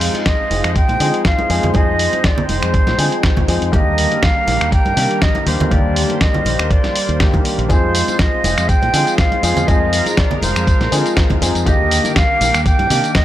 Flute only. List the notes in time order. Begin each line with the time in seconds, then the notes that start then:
Already playing: C5
0.26 D#5
0.76 G5
1.26 F5
1.75 D#5
2.25 D5
2.49 C5
3.73 D#5
4.23 F5
4.73 G5
5.22 D#5
5.47 C5
5.72 D5
6.22 D#5
6.71 D5
7.70 C5
8.19 D#5
8.68 G5
9.18 F5
9.68 D#5
10.17 D5
10.43 C5
11.66 D#5
12.16 F5
12.66 G5
13.15 D#5